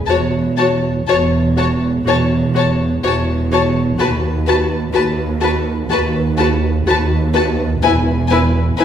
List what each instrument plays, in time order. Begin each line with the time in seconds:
0.06 double bass section E1, cello section E2, viola section F#4, violin section C#5 A5
0.57 viola section F#4, violin section C#5 A5
1.07 double bass section E1, cello section E2, viola section F#4, violin section C#5 A5
1.57 viola section F#4, violin section C#5 A5
2.05 double bass section E1, cello section E2, viola section F#4, violin section C#5 A5
2.54 viola section F#4, violin section C#5 A5
3.03 double bass section E1, cello section E2, viola section F#4, violin section C#5 A5
3.52 viola section F#4, violin section C#5 A5
3.98 double bass section D#2, cello section D#2, viola section F#4, violin section B4 A5
4.47 viola section F#4, violin section B4 A5
4.93 cello section D#2, double bass section D#2, viola section F#4, violin section B4 A5
5.41 viola section F#4, violin section B4 A5
5.89 double bass section D#2, cello section D#2, viola section F#4, violin section B4 A5
6.38 viola section F#4, violin section B4 A5
6.87 double bass section D#2, cello section D#2, viola section F#4, violin section B4 A5
7.34 viola section F#4, violin section B4 A5
7.82 double bass section E1, cello section E2, viola section E4, violin section B4 G#5
8.30 viola section E4, violin section B4 G#5
8.77 double bass section E1, cello section E2, viola section E4, violin section B4 G#5